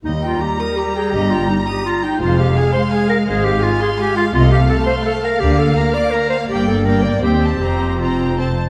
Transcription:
<<
  \new Staff \with { instrumentName = "Violin section" } { \time 3/4 \key ees \major \tempo 4 = 167 bes''2.~ | bes''2. | f''2.~ | f''2. |
\key f \mixolydian f''2.~ | f''2. | g''4 g''4 g''8 a''8 | bes''4 bes''4 a''8 r8 | }
  \new Staff \with { instrumentName = "Violin section" } { \time 3/4 \key ees \major ees''8 g''8 bes''8 ees'''8 bes''8 g''8 | ees''8 g''8 bes''8 ees'''8 bes''8 g''8 | c''8 f''8 aes''8 c'''8 aes''8 f''8 | c''8 f''8 aes''8 c'''8 aes''8 f''8 |
\key f \mixolydian ees''8 f''8 a''8 c'''8 a''8 f''8 | d''8 f''8 bes''8 d'''8 bes''8 f''8 | d''4 d''4 c''4 | c''4 c''4 c''8 r8 | }
  \new Staff \with { instrumentName = "Clarinet" } { \time 3/4 \key ees \major ees'8 f'8 g'8 bes'8 g'8 aes'8 | g'8 f'8 ees'8 g'8 f'8 ees'8 | f'8 g'8 aes'8 c''8 aes'8 bes'8 | aes'8 g'8 f'8 aes'8 g'8 f'8 |
\key f \mixolydian f'8 g'8 a'8 c''8 a'8 bes'8 | g'8 a'8 bes'8 d''8 bes'8 c''8 | g'8 a'8 bes'8 d''8 g'4 | g'4 f'4 r4 | }
  \new Staff \with { instrumentName = "Viola section" } { \time 3/4 \key ees \major g2.~ | g2. | aes2.~ | aes2. |
\key f \mixolydian a2. | bes2. | bes4 bes4 c'4 | c'4 c'4 c'8 r8 | }
  \new Staff \with { instrumentName = "Cello section" } { \clef bass \time 3/4 \key ees \major ees,4 r2 | g,4 r2 | f,4 r2 | aes,4 r2 |
\key f \mixolydian c4 r2 | d4 r2 | g,2 ees,4 | f,2~ f,8 r8 | }
  \new Staff \with { instrumentName = "Double bass section" } { \clef bass \time 3/4 \key ees \major ees,4 r2 | g,,4 r2 | f,,4 r2 | aes,,4 r2 |
\key f \mixolydian c,4 r2 | d,4 r2 | g,,2 ees,4 | f,,2~ f,,8 r8 | }
>>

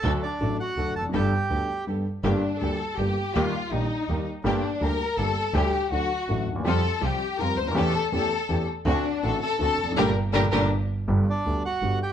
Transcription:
<<
  \new Staff \with { instrumentName = "Bandoneon" } { \time 3/4 \key g \major \tempo 4 = 163 <a' a''>16 r16 <d' d''>4 <fis' fis''>4 <a' a''>8 | <g' g''>2 r4 | \key g \minor r2. | r2. |
r2. | r2. | r2. | r2. |
r2. | r2. | \key g \major r8 <d' d''>4 <fis' fis''>4 <g' g''>16 r16 | }
  \new Staff \with { instrumentName = "Violin section" } { \time 3/4 \key g \major r2. | r2. | \key g \minor d'4 a'4 g'4 | f'4 ees'4. r8 |
d'4 bes'4 a'4 | g'4 fis'4. r8 | a'4 g'4 bes'8 c''16 bes'16 | a'4 a'4. r8 |
d'4 a'8 a'8 a'4 | <d' g' bes'>8 r8 <d' g' bes'>8 <d' g' bes'>8 r4 | \key g \major r2. | }
  \new Staff \with { instrumentName = "String section" } { \time 3/4 \key g \major <d' fis' a'>8 r8 <d' fis' a'>8 r8 <d' fis' a'>8 r8 | <b g' a'>8 r8 <b g' a'>8 r8 <b g' a'>8 r8 | \key g \minor <bes d' g'>8 r8 <bes d' g'>8 r8 <bes d' g'>8 r8 | <bes ees' g'>8 r8 <bes ees' g'>8 r8 <bes ees' g'>8 r8 |
<bes d' g'>8 r8 <bes d' g'>8 r8 <bes d' g'>8 r8 | <a d' g'>8 r8 <a d' fis'>8 r8 <a d' fis'>8 r8 | <g c' f'>8 r8 <g c' f'>8 r8 <g c' f'>8 r8 | <a cis' g'>8 r8 <a cis' g'>8 r8 <a cis' g'>8 r8 |
<c' d' fis'>8 r8 <c' d' fis'>8 r8 <c' d' fis'>8 r8 | <bes d' g'>8 r8 <bes d' g'>8 <bes d' g'>8 r4 | \key g \major r2. | }
  \new Staff \with { instrumentName = "Upright piano" } { \clef bass \time 3/4 \key g \major <d, d fis a d' a'>8 r8 <a,, a, fis a d' a'>8 r8 <d, d fis a d' a'>8 r32 e,32 f,32 fis,32 | <g,, g, g b d' a'>8 r8 <d, d g b d' a'>8 r8 <g,, g, g b d' a'>8 r8 | \key g \minor <g,, g, d g bes g'>8 r8 <d, d g bes g'>8 r8 <g,, g, d g bes g'>8 r8 | <ees, ees g bes g'>8 r8 <bes,, bes, ees g bes g'>8 r8 <ees, ees g bes g'>8 r8 |
<g,, g, d g bes g'>8 r8 <d, d g bes g'>8 r8 <g,, g, d g bes g'>8 r8 | <d, d g a g'>8 r8 <d, d fis a fis'>8 r8 <a,, a, d fis a fis'>8 r32 d,32 ees,32 e,32 | <f, f g c' g'>8 r8 <c, c f g c' g'>8 r8 <f, f g c' g'>8 r32 cis,32 d,32 ees,32 | <e, e a cis' g'>8 r8 <e, e a cis' g'>8 r8 <e, e a cis' g'>8 r8 |
<d, d a c' fis'>8 r8 <a,, a, d a c' fis'>8 r8 <d, d a c' fis'>8 r32 e,32 f,32 fis,32 | <bes, d g>8 r8 <bes, d g>8 <bes, d g>8 r4 | \key g \major <g,, g, d g b g'>8 r8 <d, d g b g'>8 r8 <g,, g, d g b g'>8 r8 | }
  \new Staff \with { instrumentName = "Double bass" } { \clef bass \time 3/4 \key g \major d,8 r8 a,,8 r8 d,8 f,,8 | g,,8 r8 d,8 r4. | \key g \minor g,,8 r8 d,8 r8 g,,8 r8 | ees,8 r8 bes,,8 r8 ees,8 r8 |
g,,8 r8 d,8 r8 g,,8 r8 | d,8 r8 d,8 r8 a,,8 ees,8 | f,8 r8 c,8 r8 f,8 d,8 | e,8 r8 e,8 r8 e,8 r8 |
d,8 r8 a,,8 r8 d,8 f,,8 | g,,8 r8 g,,8 g,,8 r4 | \key g \major g,,8 r8 d,8 r8 g,,8 r8 | }
>>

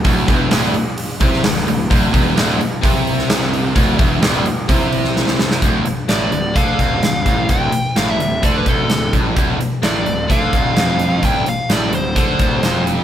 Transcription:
<<
  \new Staff \with { instrumentName = "Lead electric guitar" } { \time 4/4 \key d \minor \tempo 4 = 129 r1 | r1 | r1 | r4 d''4 f''2 |
g''4 f''16 e''8. d''16 b'16 a'4 r8 | r4 d''4 f''2 | g''8 f''8 d''8 c''2 r8 | }
  \new Staff \with { instrumentName = "Distorted electric guitar" } { \clef bass \time 4/4 \key d \minor d,8 e,8 d,8 r4 c8 d,8 d,8 | d,8 e,8 d,8 r8 c2 | d,8 e,8 d,8 r8 c2 | d,8 r8 a,8 d,8 d8 d,8 d,8 a,8 |
d,8 r8 a,8 d,8 d8 d,8 d,8 a,8 | d,8 r8 a,8 d,8 d8 d,8 f,4 | d,8 r8 a,8 d,8 d8 d,8 f,4 | }
  \new Staff \with { instrumentName = "Distorted electric guitar" } { \clef bass \time 4/4 \key d \minor d,8 e,8 d,8 r4 c8 d,8 d,8 | d,8 e,8 d,8 r8 c2 | d,8 e,8 d,8 r8 c2 | d,8 r8 a,8 d,8 d8 d,8 d,8 a,8 |
d,8 r8 a,8 d,8 d8 d,8 d,8 a,8 | d,8 r8 a,8 d,8 d8 d,8 f,4 | d,8 r8 a,8 d,8 d8 d,8 f,4 | }
  \new Staff \with { instrumentName = "Picked electric bass" } { \clef bass \time 4/4 \key d \minor d,,8 e,,8 d,,8 r4 c,8 d,,8 d,,8 | d,,8 e,,8 d,,8 r8 c,2 | d,,8 e,,8 d,,8 r8 c,2 | d,,8 r8 a,,8 d,,8 d,8 d,,8 d,,8 a,,8 |
d,,8 r8 a,,8 d,,8 d,8 d,,8 d,,8 a,,8 | d,,8 r8 a,,8 d,,8 d,8 d,,8 f,,4 | d,,8 r8 a,,8 d,,8 d,8 d,,8 f,,4 | }
  \new DrumStaff \with { instrumentName = "Drums" } \drummode { \time 4/4 <hho bd>8 <hho bd>8 <hho sn>8 hho8 hho8 <hho bd>16 sn16 <hho sn>16 sn16 hho8 | <hho bd>8 <hho bd>8 <hho sn>8 hho8 <hho bd>8 hho16 sn16 <hho sn>16 sn16 hho8 | <hho bd>8 <hho bd>8 <hho sn>8 hho8 <hho bd>8 hho16 sn16 sn16 sn16 sn16 sn16 | <hh bd>8 hh8 <hh sn>8 hh8 <hh bd>8 <hh bd>8 <hh sn>8 <hh bd>8 |
<hh bd>8 hh8 <hh sn>8 hh8 <hh bd>8 <hh bd>8 <hh sn>8 <hh bd>8 | <hh bd>8 hh8 <hh sn>8 hh8 <hh bd>8 <hh bd>8 <hh sn>8 hh8 | <hh bd>8 hh8 <hh sn>8 hh8 <hh bd>8 <hh bd>8 <hh sn>8 hh8 | }
>>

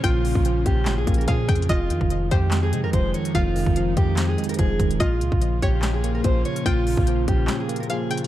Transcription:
<<
  \new Staff \with { instrumentName = "Synth pluck" } { \time 4/4 \key bes \dorian \tempo 4 = 145 g''2. f''8 g''8 | ees''4. c''8 r2 | f''2. r4 | ees''4. des''8 r2 |
g''2. f''8 g''8 | }
  \new Staff \with { instrumentName = "Steel-string acoustic guitar" } { \time 4/4 \key bes \dorian f'4. g'8. aes'8 bes'16 aes'4 | f'4. g'8. aes'8 bes'16 c''8 des''8 | f'4. g'8. aes'8 bes'16 aes'4 | f'4. g'8. aes'8 bes'16 c''8 des''8 |
f'4. g'8. aes'8 bes'16 aes'4 | }
  \new Staff \with { instrumentName = "Analog synth pad" } { \time 4/4 \key bes \dorian <bes des' f'>1 | <f aes ees'>1~ | <f aes ees'>1 | <bes des' f'>1~ |
<bes des' f'>1 | }
  \new Staff \with { instrumentName = "Tine electric piano" } { \clef bass \time 4/4 \key bes \dorian <bes, des f bes des'>8 des8 f4 des'8 bes8 f8 des8 | f,8 ees8 f4 c'8 aes8 f8 ees8 | f,8 ees8 f4 c'8 aes8 f8 ees8 | bes,8 des8 f4 des'8 bes8 f8 des8 |
bes,8 des8 f4 des'8 bes8 f8 des8 | }
  \new Staff \with { instrumentName = "808-style bass" } { \clef bass \time 4/4 \key bes \dorian bes,,8. bes,,8. bes,,8 aes,,16 bes,,16 bes,,8 bes,8 f,8 | f,,8 f,16 f,,8. f,4 c16 f,16 f,,8 r8 | f,,8. f,,8. f,4 r8 f,,8 ees,,8 | bes,,8 des,16 bes,,8. bes,,4. bes,,8 r8 |
bes,,8. bes,,8. bes,,8 r2 | }
  \new DrumStaff \with { instrumentName = "Drums" } \drummode { \time 4/4 <hh bd>8 hho16 bd16 hh8 <hh bd>8 \tuplet 3/2 { <hc hh sn>16 r16 r16 <hh bd>16 hh16 hh16 <hh bd>16 r16 r16 <hh bd>16 hh16 hh16 } | <hh bd>8 hh16 bd16 hh8 <hh bd>8 <hc hh sn>8 hh8 <hh bd>8 hh16 hh16 | <hh bd>8 hho16 bd16 hh8 <hh bd>8 <hc hh sn>8 hh32 hh32 hh32 hh32 <hh bd>8 <hh bd>16 hh16 | <hh bd>8 hh16 bd16 hh8 <hh bd>8 <hc hh sn>8 hh8 <hh bd>8 hh16 hh16 |
<hh bd>8 hho16 bd16 hh8 <hh bd>8 \tuplet 3/2 { <hc hh sn>16 r16 r16 hh16 hh16 hh16 hh16 r16 r16 hh16 hh16 r16 } | }
>>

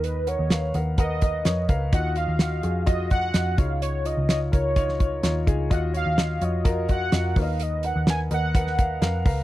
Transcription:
<<
  \new Staff \with { instrumentName = "Soft synth lead" } { \time 4/4 \key ces \lydian \tempo 4 = 127 b'8 des''4 r8 dis''4. r8 | ges''8 f''4. ees''8 ges''4 f''8 | des''8 ees''8 ees''8 des''2 r8 | ges''8 f''4 ees''4 ges''4 f''8 |
dis''8 fis''8 aes''8 fis''2 r8 | }
  \new Staff \with { instrumentName = "Upright piano" } { \time 4/4 \key ces \lydian <ais' b' dis''>8 <ais' b' fis''>8 <ais' b' f''>8 <ais' b' fis''>8 <ais' b' fis''>8 <ais' b' dis''>8 <ais' b' des''>8 <ais' b' f''>8 | <f' ges' ees''>8 <f' ges' f''>8 <f' ges' ges''>8 <f' ges' aes'>8 <f' ges' ees''>8 <f' ges' ees''>8 <f' ges' ees''>8 <ees' f' des''>8~ | <ees' f' des''>8 <ees' f' des''>8 <ees' f' des''>8 <ees' f' bes'>8 <ees' f' des''>8 <ees' f' des''>8 <ees' f' des''>8 <ees' f' aes'>8 | <f' ges' ees''>8 <f' ges' des''>8 <f' ges' ees''>8 <f' ges' des''>8 <f' ges' bes'>8 <f' ges' ees''>8 <f' ges' ees''>8 <ais' b' des'' dis''>8~ |
<ais' b' des'' dis''>8 <ais' b' fis''>8 <ais' b' fis''>8 <ais' b' dis''>8 <ais' b' fis''>8 <ais' b' f''>8 <ais' b' f'' fis''>8 <ais' b' f'' ais''>8 | }
  \new Staff \with { instrumentName = "Upright piano" } { \clef bass \time 4/4 \key ces \lydian dis4 r2. | ees4. r2 des8~ | des4 r2. | ees4. r2 dis8~ |
dis4 r2. | }
  \new Staff \with { instrumentName = "Picked electric bass" } { \clef bass \time 4/4 \key ces \lydian dis,8. dis,8. dis,4. f,8 des,8 | ees,8. ees,8. f,4. f,8 des,8~ | des,8. des,8. des,4. ees,8 des,8 | ees,8. ees,8. f,4. f,8 dis,8~ |
dis,8. dis,8. dis,4. f,8 des,8 | }
  \new DrumStaff \with { instrumentName = "Drums" } \drummode { \time 4/4 hh8 hh8 <hh sn>8 hh8 <hh bd>8 <hh bd>8 <hh sn>8 <hh bd>8 | <hh bd>8 hh8 <hh sn>8 hh8 <hh bd>8 <hh bd>8 <hh sn>8 <hh bd>8 | hh8 hh8 <hh sn>8 <hh bd>8 <hh bd>16 sn16 <hh bd>8 <hh sn>8 <hh bd>8 | <hh bd>8 hh8 <hh sn>8 hh8 <hh bd>8 <hh bd>8 <hh sn>8 <hho bd>8 |
hh8 hh8 <hh sn>8 hh8 <hh bd>16 sn16 <hh bd>8 <hh sn>8 <hho bd>8 | }
>>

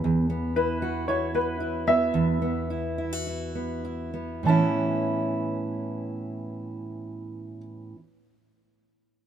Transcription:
<<
  \new Staff \with { instrumentName = "Upright piano" } { \time 4/4 \key a \major \tempo 4 = 99 r4 b'4 cis''8 b'4 e''8~ | e''2. r4 | a''1~ | a''1 | }
  \new Staff \with { instrumentName = "Steel-string acoustic guitar" } { \time 4/4 \key a \major e,8 b8 e'8 fis'8 e'8 b8 e'8 b8 | e,8 b8 e'8 e'16 fis'16 e'8 b8 e'8 b8 | <a, e b cis' e'>1~ | <a, e b cis' e'>1 | }
>>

